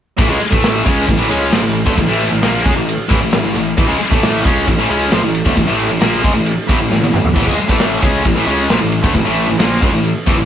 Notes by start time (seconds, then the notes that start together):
0.18 A1 A2 E3, kick, ride
0.29 C#2 C#3 G#3
0.40 muted distorted electric guitar stroke, muted picked electric bass stroke, ride
0.51 A1 A2 E3 A3, kick
0.64 snare, ride
0.84 C#2 C#3 G#3 C#4, kick, ride
1.07 A1 A2 E3, kick, ride
1.17 A1 A2 E3
1.29 C#2 C#3 G#3 C#4, ride
1.51 A#1 A#2 F3, snare, ride
1.62 A1 A2 E3
1.75 ride
1.86 D2 D3 A3, kick
1.97 A1 A2 E3, kick, ride
2.08 A1 A2 E3 A3
2.20 ride
2.31 A1 A2 E3
2.42 A#1 A#2 F3 A#3, snare, ride
2.64 C#2 C#3 G#3, kick, ride
2.76 A1 A2 E3
2.89 ride
3.09 A1 A2 E3, kick, ride
3.21 A1 A2 E3
3.31 A1 A2 E3, snare, ride
3.43 A1 A2 E3
3.55 A1 A2 E3, ride
3.77 A1 A2 E3, kick, ride
3.88 C#2 C#3 G#3
3.99 muted picked electric bass stroke, muted distorted electric guitar stroke, ride
4.10 A1 A2 E3 A3, kick
4.23 snare, ride
4.44 C#2 C#3 G#3 C#4, kick, ride
4.67 A1 A2 E3, kick, ride
4.77 A1 A2 E3
4.89 C#2 C#3 G#3 C#4, ride
5.11 A#1 A#2 F3, snare, ride
5.22 A1 A2 E3
5.35 ride
5.45 D2 D3 A3, kick
5.57 A1 A2 E3, kick, ride
5.67 A1 A2 E3 A3
5.79 ride
5.90 A1 A2 E3
6.01 A#1 A#2 F3 A#3, snare, ride
6.24 C#2 C#3 G#3, kick, ride
6.35 A1 A2 E3
6.46 ride
6.69 A1 A2 E3, kick, ride
6.80 A1 A2 E3
6.91 A1 A2 E3, snare
7.01 A1 A2 E3, high tom
7.13 A1 A2 E3, mid tom
7.25 floor tom
7.33 A1 A2, kick, crash, splash
7.37 A2 E3
7.47 C#2 C#3 G#3, kick
7.58 muted picked electric bass stroke, muted distorted electric guitar stroke, ride
7.69 A1 A2 E3 A3, kick
7.80 snare, ride
8.02 C#2 C#3 G#3 C#4, kick, ride
8.25 A1 A2 E3, kick, ride
8.36 A1 A2 E3
8.47 C#2 C#3 G#3 C#4, ride
8.70 A#1 A#2 F3, snare, ride
8.81 A1 A2 E3
8.92 ride
9.03 D2 D3 A3, kick
9.14 A1 A2 E3, kick, ride
9.25 A1 A2 E3 A3
9.37 ride
9.48 A1 A2 E3
9.58 A#1 A#2 F3 A#3, snare, ride
9.82 C#2 C#3 G#3, kick, ride
9.93 A1 A2 E3
10.04 ride
10.27 A1 A2 E3, kick, ride
10.37 A1 A2 E3